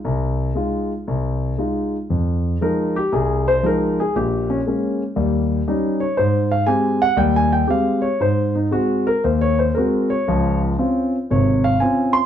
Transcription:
X:1
M:4/4
L:1/8
Q:"Swing" 1/4=117
K:Fm
V:1 name="Grand piano"
z8 | z2 B G A c B A | G D z4 z d | c f a _g (3=g a g f d |
c E _G B (3c d c B d- | d z3 d f a c' |]
V:2 name="Grand piano" clef=bass
C,,2 [A,EF] z C,,2 [A,EF] z | F,,2 [F,A,E] z C,,2 [F,A,E] z | [B,,,B,,]2 [A,B,D] z [E,,G,]2 [G,DE] z | A,,2 [A,CG] z [E,,G,]2 [A,CG] z |
A,,2 [A,C] z E,,2 [A,C_G] z | [D,,F,]2 [CDF] z [A,,,C,]2 [CDF] z |]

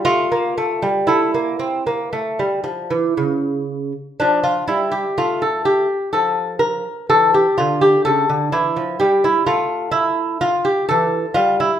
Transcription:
X:1
M:4/4
L:1/16
Q:1/4=62
K:Dm
V:1 name="Lute"
F4 E8- E2 z2 | D F E G F A G2 A2 B2 A G F G | A2 E2 G E F2 E2 F G A2 F E |]
V:2 name="Lute" clef=bass
A, B, A, G, A, B, C B, A, G, F, E, ^C,4 | F,2 G,2 A,4 F,4 E,2 D,2 | ^C, D, E, F, G,2 A,6 E,2 G,2 |]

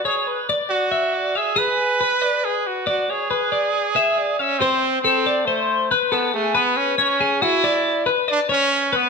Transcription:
X:1
M:7/8
L:1/8
Q:1/4=139
K:A
V:1 name="Clean electric guitar"
c B d2 e d e | G2 B d B2 d | c B d2 e d e | =c2 A d c2 B |
A G B2 c G F | d2 B d c2 B |]
V:2 name="Trumpet"
G2 z F3 G | B4 G F F | G6 C | =C2 C2 A,2 z |
B, A, B, C C2 E- | E2 z D C2 B, |]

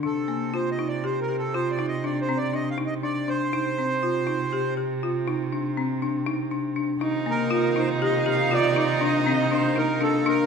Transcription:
X:1
M:7/4
L:1/8
Q:1/4=120
K:Cdor
V:1 name="Accordion"
A2 (3c e d (3c B A (3c d e (3d c d (3e f e d c- | c4- c z8 z | z B2 c e f d d e2 c B A B |]
V:2 name="Marimba"
D B, F E G G F E D C D E D D | E C F E G G F E D C D E D D | E B, F E G G F E D C D E D D |]
V:3 name="Viola"
z12 z2 | z12 z2 | E12- E2 |]
V:4 name="String section"
z12 z2 | z12 z2 | [E,B,F]12- [E,B,F]2 |]
V:5 name="Cello" clef=bass
C,12- C,2 | C,12- C,2 | C,12- C,2 |]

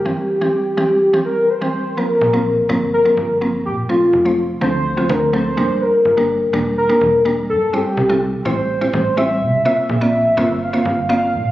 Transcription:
X:1
M:4/4
L:1/16
Q:1/4=125
K:Bblyd
V:1 name="Soft synth lead"
G8- G2 B2 c4 | B6 z2 B4 z2 G2 | F4 z2 c4 B2 c4 | B6 z2 B4 z2 A2 |
G4 z2 c4 c2 e4 | e8 f4 f4 |]
V:2 name="Synth pluck"
[E,G,CG]2 z [E,G,CG]2 z [E,G,CG]2 z [E,G,CG]3 z [E,G,CG]2 z | [F,B,CB]2 z [F,B,CB]2 z [F,B,CB]2 z [F,B,CB]2 z [F,B,CB]3 z | [F,A,CA]2 z [F,A,Cc]2 z [F,A,CA]2 z [F,A,CF]2 z [F,A,CA]2 [G,B,DB]2- | [G,B,DB]2 z [G,B,DB]2 z [G,B,DB]2 z [G,B,DB]2 z [G,B,DB]3 z |
[G,CEc]2 z [G,CEA]2 z [G,CEc]2 z [G,CEc]2 z [G,CEc]3 z | [B,CFc]2 z [B,CFd]2 z [B,CFc]2 z [B,CFc]2 z [B,CFd]3 z |]
V:3 name="FM bass" clef=bass
z16 | z2 B,,,4 G,,,4 G,,,4 B,,2 | z2 F,,,4 D,,4 D,,4 G,,,2 | z2 G,,,4 E,,,4 E,,,4 G,,2 |
z2 C,,4 A,,,4 A,,,4 C,2 | z2 B,,,4 G,,,4 G,,,4 B,,2 |]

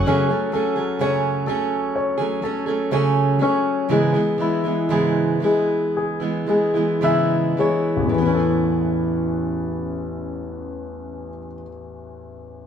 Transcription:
X:1
M:4/4
L:1/16
Q:1/4=57
K:A
V:1 name="Grand piano"
[F,C]2 A2 c2 A2 c2 A2 c2 C2 | G,2 E2 G2 G,2 G2 G,2 [Ee]2 [G,c]2 | [A,,,E,,E,B,CA]16 |]
V:2 name="Steel-string acoustic guitar"
[F,,C,F,A,CG] [F,A,CG] [F,A,CG] [F,A,CG] [F,,C,F,A,CG]2 [F,A,CG]3 [F,A,CG] [F,A,CG] [F,A,CG] [F,,C,F,A,CG]2 [F,A,CG]2 | [G,,C,E,G,B,E] [E,G,B,E] [E,G,B,E] [E,G,B,E] [G,,C,E,G,B,E]2 [E,G,B,E]3 [E,G,B,E] [E,G,B,E] [E,G,B,E] [G,,C,E,G,B,E]2 [E,G,B,E]2 | [A,,E,B,CE]16 |]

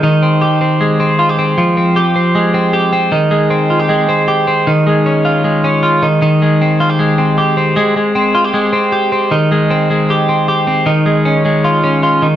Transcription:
X:1
M:4/4
L:1/16
Q:1/4=155
K:Ab
V:1 name="Clean electric guitar"
E,2 C2 G2 C2 A,2 C2 F G C2 | F,2 C2 G2 C2 A,2 C2 G2 C2 | E,2 A,2 C2 F G A,2 C2 G2 C2 | E,2 A,2 D2 F2 A,2 D2 F2 E,2 |
E,2 A,2 C2 F G A,2 C2 G2 C2 | A,2 A,2 C2 F G A,2 C2 G2 C2 | E,2 A,2 C2 A,2 G2 C2 G2 C2 | E,2 A,2 D2 A,2 F2 D2 F2 E,2 |]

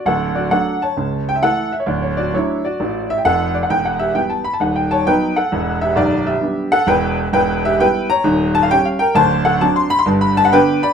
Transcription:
X:1
M:4/4
L:1/16
Q:"Swing" 1/4=132
K:D
V:1 name="Grand piano"
[Af]2 [Fd]2 [Af]2 [ca]4 g e [Af]2 e c | d c [Fd]2 [Ec]2 [Fd]4 e g [Af]2 d f | g f [Ge]2 g a b a f g [ca]2 [Bg]2 [Af]2- | [Af]2 [Ge]2 [Gd]2 [Ge]4 [Af]2 [Bg]2 z2 |
[K:G] [Bg]2 [Ge]2 [Bg]2 [^c_b]4 a =f g f [_Bg]2 | [ca]2 [Af]2 a c' b c' a b a f [Bg]2 [db]2 |]
V:2 name="Grand piano" clef=bass
[D,,,D,,]4 [F,A,D]4 [C,,C,]4 [E,A,E]4 | [D,,,D,,]4 [F,A,D]4 [A,,,A,,]4 [=F,,,=F,,]4 | [E,,,E,,]4 [E,G,B,]4 [^D,,,^D,,]4 [F,B,^D]4 | [E,,,E,,]4 [B,,,,B,,,]4 [G,B,D]4 [E,,,E,,]4 |
[K:G] [E,,,E,,]4 [G,B,E]4 [_E,,,_E,,]4 [G,_DG]4 | [D,,,D,,]4 [F,CD]4 [G,,,G,,]4 [D,B,D]4 |]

